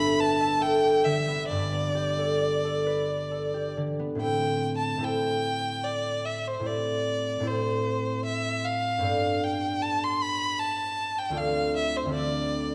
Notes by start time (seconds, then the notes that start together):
Already playing: G1 G2 B3 G4 B4 E5 B5
0.00 A4
0.20 B4 A5
0.40 E5
0.61 A4 G5
0.83 G4
1.04 D3 E5
1.28 B3
1.49 G1 G2 D5
1.73 B3
1.95 G4
2.18 A4
2.41 D5
2.65 A4
2.86 B4
3.08 D5
3.31 A4
3.54 G4
3.77 D3
3.99 B3
4.15 A2 C4 E4 A4
4.21 C5 G5
4.77 A5
4.97 A2 C4 E4
5.02 A4 C5 G5
5.84 D5
6.25 E5
6.47 C5
6.60 A2 C4 E4 G4
6.64 C5 D5
7.40 A2 C4 E4
7.44 G4 C5
8.25 E5
8.64 F5
8.98 G2 B3 G4 A4
9.03 D5
9.44 G5
9.82 A5
10.03 C6
10.21 B5
10.59 A5
11.18 G5
11.29 D2 C4 F4 A4
11.34 D5 F5
11.76 E5
11.96 C5
12.06 D2 C4 F4
12.10 A4 D5
12.14 D5